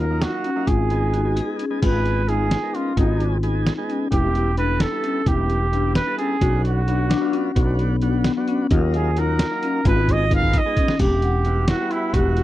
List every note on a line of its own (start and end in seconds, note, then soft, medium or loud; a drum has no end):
0.00 0.24 D#2 loud
0.00 0.30 D#4 medium
0.00 0.24 A#4 medium
0.10 0.50 F#3 medium
0.10 0.50 A#3 medium
0.10 0.51 D#4 medium
0.10 0.51 F4 medium
0.22 0.69 F#4 medium
0.22 snare loud
0.22 closed hi-hat medium
0.44 0.60 C#4 medium
0.44 closed hi-hat medium
0.56 0.68 F#3 medium
0.56 0.67 A#3 medium
0.56 0.68 D#4 medium
0.56 0.68 F4 medium
0.67 1.39 G#1 medium
0.67 0.98 F4 medium
0.67 1.60 G#4 medium
0.67 kick medium
0.67 closed hi-hat medium
0.90 1.21 G#3 medium
0.90 1.21 B3 medium
0.90 1.21 D#4 medium
0.90 1.21 G#4 medium
0.90 closed hi-hat medium
1.13 1.44 D#4 medium
1.13 1.37 F#4 medium
1.13 closed hi-hat medium
1.24 1.65 G#3 medium
1.24 1.65 B3 medium
1.24 1.65 D#4 medium
1.24 1.65 G#4 medium
1.36 1.79 G#4 medium
1.36 closed hi-hat medium
1.59 1.75 C#4 medium
1.59 closed hi-hat medium
1.70 1.80 G#3 medium
1.70 1.80 B3 medium
1.70 1.80 D#4 medium
1.70 1.81 G#4 medium
1.81 2.54 G#1 medium
1.81 2.22 G#3 medium
1.81 2.22 B3 medium
1.81 2.22 D#4 medium
1.81 2.13 F4 medium
1.81 2.23 G#4 medium
1.81 2.30 B4 medium
1.81 kick loud
1.81 closed hi-hat medium
1.81 crash medium
2.06 closed hi-hat medium
2.28 2.58 G#3 medium
2.28 2.59 B3 medium
2.28 2.59 D#4 medium
2.28 2.59 F4 medium
2.28 2.76 G#4 medium
2.28 closed hi-hat medium
2.51 snare loud
2.51 closed hi-hat medium
2.62 2.93 G#3 medium
2.62 2.93 B3 medium
2.62 2.93 D#4 medium
2.62 2.93 A#4 medium
2.75 2.90 C#4 medium
2.75 2.98 F4 medium
2.75 closed hi-hat medium
2.97 3.69 G#1 loud
2.97 3.38 G#3 medium
2.97 3.38 B3 medium
2.97 3.38 D#4 medium
2.97 3.41 D#4 medium
2.97 3.28 F4 medium
2.97 3.38 G#4 medium
2.97 kick loud
2.97 closed hi-hat medium
3.20 closed hi-hat medium
3.43 3.73 G#3 medium
3.43 3.73 B3 medium
3.43 3.73 D#4 medium
3.43 3.74 G#4 medium
3.43 closed hi-hat medium
3.67 snare loud
3.67 closed hi-hat medium
3.77 4.08 G#3 medium
3.77 4.08 B3 medium
3.77 4.08 D#4 medium
3.77 4.08 G#4 loud
3.89 4.04 C#4 medium
3.89 closed hi-hat soft
4.11 4.84 E1 medium
4.11 4.52 G3 medium
4.11 4.52 B3 medium
4.11 4.52 E4 medium
4.11 4.42 E4 medium
4.11 4.52 G4 medium
4.11 4.55 G4 medium
4.11 kick loud
4.11 closed hi-hat medium
4.35 closed hi-hat medium
4.57 4.88 G3 medium
4.57 4.88 B3 medium
4.57 4.88 D4 medium
4.57 4.88 E4 medium
4.57 4.88 A4 medium
4.57 4.83 B4 loud
4.57 closed hi-hat medium
4.80 5.29 A4 loud
4.80 snare loud
4.80 closed hi-hat medium
4.91 5.22 G3 medium
4.91 5.22 B3 medium
4.91 5.22 E4 medium
4.91 5.22 A4 medium
5.04 5.19 C#4 medium
5.04 closed hi-hat medium
5.26 5.98 E1 loud
5.26 5.67 G3 medium
5.26 5.67 B3 medium
5.26 5.57 E4 medium
5.26 5.67 E4 medium
5.26 5.67 G4 medium
5.26 5.95 G4 medium
5.26 kick loud
5.26 closed hi-hat medium
5.50 closed hi-hat medium
5.72 6.02 G3 medium
5.72 6.03 B3 medium
5.72 6.03 D4 medium
5.72 6.03 E4 medium
5.72 6.03 G4 medium
5.72 closed hi-hat medium
5.95 6.17 B4 loud
5.95 snare loud
5.95 closed hi-hat medium
6.06 6.37 G3 medium
6.06 6.37 B3 medium
6.06 6.37 E4 medium
6.06 6.37 A4 medium
6.18 6.34 C#4 medium
6.18 6.61 G#4 medium
6.18 closed hi-hat medium
6.41 7.13 B1 loud
6.41 6.82 F#3 medium
6.41 6.82 B3 medium
6.41 6.82 D4 medium
6.41 6.72 F#4 medium
6.41 6.82 F#4 medium
6.41 kick loud
6.41 closed hi-hat medium
6.64 7.75 F#4 medium
6.64 closed hi-hat medium
6.88 7.18 F#3 medium
6.88 7.18 B3 medium
6.88 7.18 D4 medium
6.88 7.18 F#4 medium
6.88 closed hi-hat medium
7.10 7.34 D4 loud
7.10 snare loud
7.10 closed hi-hat medium
7.20 7.51 F#3 loud
7.20 7.51 B3 medium
7.20 7.52 D4 medium
7.20 7.52 F4 loud
7.33 7.80 C#4 medium
7.33 7.48 C#4 medium
7.33 closed hi-hat soft
7.55 8.28 B1 loud
7.55 7.96 F#3 medium
7.55 7.96 B3 medium
7.55 7.96 D4 medium
7.55 7.86 F#4 medium
7.55 7.96 F#4 medium
7.55 kick loud
7.55 closed hi-hat medium
7.79 8.67 B3 medium
7.79 closed hi-hat medium
8.02 8.32 F#3 medium
8.02 8.32 B3 medium
8.02 8.33 D4 medium
8.02 8.32 D4 medium
8.02 8.32 F#4 loud
8.02 closed hi-hat medium
8.24 snare loud
8.24 closed hi-hat medium
8.37 8.67 F#3 loud
8.37 8.67 B3 medium
8.37 8.67 D4 loud
8.37 8.67 F#4 loud
8.48 8.63 C#4 medium
8.48 closed hi-hat medium
8.71 9.42 D#2 loud
8.71 9.11 F#3 medium
8.71 9.11 A#3 medium
8.71 9.11 D#4 medium
8.71 9.02 F4 medium
8.71 9.12 F4 loud
8.71 kick loud
8.71 closed hi-hat medium
8.94 9.21 G#4 medium
8.94 closed hi-hat medium
9.17 9.47 F#3 medium
9.17 9.47 A#3 medium
9.17 9.47 D#4 medium
9.17 9.48 D#4 medium
9.17 9.47 F#4 medium
9.17 9.87 A#4 medium
9.17 closed hi-hat medium
9.39 snare loud
9.39 closed hi-hat medium
9.51 9.81 F#3 medium
9.51 9.81 A#3 medium
9.51 9.81 D#4 medium
9.51 9.81 F4 medium
9.63 9.78 C#4 medium
9.63 closed hi-hat medium
9.85 10.57 G#1 loud
9.85 10.25 G#3 medium
9.85 10.25 B3 medium
9.85 10.26 D#4 medium
9.85 10.16 F4 medium
9.85 10.26 G#4 medium
9.85 10.13 B4 medium
9.85 kick loud
9.85 closed hi-hat medium
10.08 10.33 D#5 loud
10.08 kick medium
10.08 closed hi-hat medium
10.31 10.61 G#3 medium
10.31 10.61 B3 medium
10.31 10.61 D#4 medium
10.31 10.62 D#4 medium
10.31 10.61 A#4 medium
10.31 kick medium
10.31 closed hi-hat medium
10.35 10.59 F5 loud
10.42 kick medium
10.53 kick medium
10.53 closed hi-hat medium
10.58 11.00 D#5 medium
10.66 10.96 G#3 medium
10.66 10.96 B3 medium
10.66 10.96 D#4 medium
10.66 10.96 G#4 medium
10.77 10.92 C#4 medium
10.77 kick medium
10.77 closed hi-hat medium
10.88 snare medium
10.99 11.71 E1 loud
10.99 11.15 G4 medium
10.99 11.70 G4 medium
10.99 kick loud
10.99 closed hi-hat medium
10.99 crash medium
11.22 11.53 F#5 medium
11.22 closed hi-hat medium
11.45 11.66 G3 medium
11.45 11.65 B3 medium
11.45 11.66 E4 medium
11.45 11.66 F#4 medium
11.45 closed hi-hat medium
11.68 11.79 G3 medium
11.68 11.79 B3 medium
11.68 11.98 E4 medium
11.68 11.79 E4 medium
11.68 11.93 F#4 medium
11.68 11.79 F#4 medium
11.68 snare loud
11.68 closed hi-hat medium
11.80 12.43 G3 medium
11.80 12.43 B3 medium
11.80 12.43 E4 medium
11.80 12.43 F#4 medium
11.91 12.15 E4 medium
11.91 closed hi-hat medium
12.14 12.43 E1 loud
12.14 12.43 F#4 medium
12.14 12.29 G4 medium
12.14 kick loud
12.14 closed hi-hat medium
12.37 12.43 F#4 medium
12.37 closed hi-hat medium